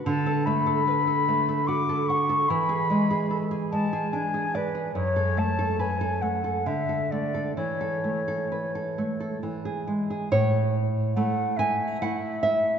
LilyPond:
<<
  \new Staff \with { instrumentName = "Flute" } { \time 3/4 \key a \major \tempo 4 = 71 a''8 b''4. d'''8 cis'''8 | b''4. a''8 gis''8 b'8 | cis''8 a''8 gis''8 fis''8 e''8 d''8 | cis''2 r4 |
r4 fis''8 e''4. | }
  \new Staff \with { instrumentName = "Nylon-string guitar" } { \time 3/4 \key a \major << { r2. | r2. | r2. | r2. |
cis''4. gis''8 fis''8 e''8 | } \\ { d16 a'16 a16 a'16 b'16 a'16 a16 a'16 fis'16 a'16 fis''16 a'16 | e16 gis'16 gis16 gis'16 a'16 gis'16 gis16 gis'16 d'16 gis'16 d''16 gis'16 | fis,16 a'16 a16 a'16 b'16 a'16 a16 a'16 d16 a'16 a16 a'16 | e16 a'16 a16 a'16 b'16 a'16 a16 a'16 e16 gis'16 gis16 gis'16 |
a,4 <a e'>4 <a e'>4 | } >> }
>>